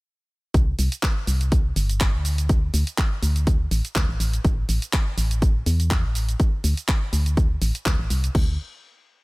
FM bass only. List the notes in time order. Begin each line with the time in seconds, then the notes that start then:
0.54 C2
0.79 C2
1.27 C2
1.76 G1
2.14 D2
2.74 D2
3.22 D2
3.71 A1
3.96 D2
4.09 A1
4.20 A1
4.45 A1
4.69 A1
5.17 A1
5.66 E2
6.04 A1
6.64 D2
7.13 D2
7.62 A1
7.86 D2
7.99 A1
8.10 C2
8.35 D2